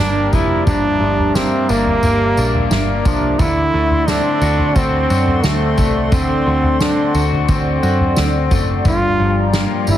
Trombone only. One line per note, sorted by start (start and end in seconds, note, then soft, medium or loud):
0.00 0.36 D4 loud
0.35 0.67 E4 loud
0.67 1.37 D4 loud
1.35 1.71 C4 loud
1.70 2.79 A#3 loud
3.07 3.41 D4 medium
3.39 4.10 E4 loud
4.09 4.78 D4 loud
4.77 5.47 C4 loud
5.45 6.13 A3 medium
6.14 6.82 C4 loud
6.81 7.22 D4 loud
7.50 8.48 C4 medium
8.87 9.51 F4 loud
9.90 9.98 E4 medium